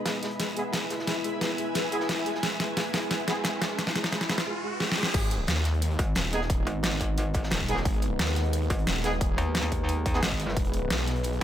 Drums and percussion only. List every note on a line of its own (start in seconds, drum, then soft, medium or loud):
0.05 snare loud
0.05 snare soft
0.05 closed hi-hat medium
0.23 snare medium
0.23 closed hi-hat medium
0.23 open hi-hat medium
0.31 closed hi-hat soft
0.40 snare medium
0.40 closed hi-hat medium
0.49 closed hi-hat soft
0.57 closed hi-hat medium
0.73 snare loud
0.73 snare medium
0.73 closed hi-hat medium
0.90 snare soft
0.90 closed hi-hat medium
0.99 snare medium
1.07 snare medium
1.07 closed hi-hat medium
1.24 closed hi-hat medium
1.41 snare medium
1.41 snare loud
1.41 closed hi-hat medium
1.58 closed hi-hat medium
1.75 snare medium
1.75 closed hi-hat medium
1.92 closed hi-hat medium
2.00 snare medium
2.09 snare medium
2.09 snare loud
2.09 closed hi-hat medium
2.26 snare soft
2.26 closed hi-hat medium
2.35 snare medium
2.43 snare medium
2.43 closed hi-hat medium
2.60 snare medium
2.60 closed hi-hat medium
2.77 snare medium
2.77 snare loud
2.77 closed hi-hat loud
2.77 closed hi-hat medium
2.86 closed hi-hat soft
2.93 snare medium
2.93 snare loud
2.93 closed hi-hat medium
3.02 closed hi-hat soft
3.11 snare medium
3.11 closed hi-hat loud
3.27 snare medium
3.27 closed hi-hat medium
3.44 snare loud
3.44 snare medium
3.44 closed hi-hat medium
3.44 closed hi-hat loud
3.61 snare loud
3.61 snare medium
3.61 closed hi-hat medium
3.78 snare soft
3.78 snare medium
3.78 closed hi-hat loud
3.78 open hi-hat medium
3.87 snare loud
3.87 snare medium
3.87 closed hi-hat medium
3.96 snare medium
3.96 closed hi-hat medium
4.04 snare medium
4.04 open hi-hat medium
4.12 snare loud
4.12 closed hi-hat medium
4.12 closed hi-hat loud
4.21 snare medium
4.29 snare loud
4.29 closed hi-hat medium
4.38 snare medium
4.38 snare loud
4.38 closed hi-hat medium
4.80 snare medium
4.92 snare medium
5.03 snare medium
5.14 kick loud
5.14 closed hi-hat medium
5.14 crash loud
5.23 closed hi-hat soft
5.30 closed hi-hat medium
5.47 snare loud
5.47 closed hi-hat medium
5.47 closed hi-hat loud
5.57 closed hi-hat soft
5.64 snare medium
5.64 closed hi-hat medium
5.64 open hi-hat medium
5.74 closed hi-hat soft
5.82 closed hi-hat medium
5.82 closed hi-hat loud
5.91 closed hi-hat soft
5.99 kick loud
5.99 closed hi-hat medium
6.15 snare loud
6.15 closed hi-hat loud
6.32 snare soft
6.32 closed hi-hat medium
6.41 snare soft
6.50 kick loud
6.50 closed hi-hat medium
6.67 closed hi-hat medium
6.83 snare loud
6.83 closed hi-hat medium
6.83 closed hi-hat loud
7.00 kick medium
7.00 closed hi-hat medium
7.18 closed hi-hat loud
7.18 closed hi-hat medium
7.34 kick loud
7.34 closed hi-hat medium
7.43 snare medium
7.50 snare loud
7.50 closed hi-hat medium
7.50 closed hi-hat loud
7.60 kick medium
7.68 snare soft
7.68 closed hi-hat medium
7.76 snare medium
7.85 kick loud
7.85 closed hi-hat medium
7.85 closed hi-hat loud
7.93 closed hi-hat soft
8.02 closed hi-hat medium
8.19 snare loud
8.19 closed hi-hat medium
8.36 snare medium
8.36 closed hi-hat medium
8.36 open hi-hat medium
8.44 closed hi-hat soft
8.53 closed hi-hat medium
8.62 closed hi-hat soft
8.70 kick loud
8.70 closed hi-hat medium
8.87 snare loud
8.87 closed hi-hat medium
9.04 snare loud
9.04 snare soft
9.04 closed hi-hat medium
9.13 closed hi-hat soft
9.21 kick loud
9.21 closed hi-hat medium
9.38 closed hi-hat medium
9.55 snare loud
9.55 closed hi-hat medium
9.63 snare medium
9.72 kick medium
9.72 closed hi-hat medium
9.89 closed hi-hat medium
10.06 kick loud
10.06 closed hi-hat medium
10.14 snare medium
10.14 snare soft
10.23 snare loud
10.23 closed hi-hat medium
10.31 kick medium
10.40 snare soft
10.40 closed hi-hat medium
10.48 snare medium
10.56 kick loud
10.56 closed hi-hat medium
10.64 closed hi-hat soft
10.73 closed hi-hat medium
10.90 snare loud
10.90 closed hi-hat medium
10.99 closed hi-hat soft
11.07 snare medium
11.07 closed hi-hat medium
11.07 open hi-hat medium
11.16 closed hi-hat soft
11.23 closed hi-hat medium
11.33 closed hi-hat soft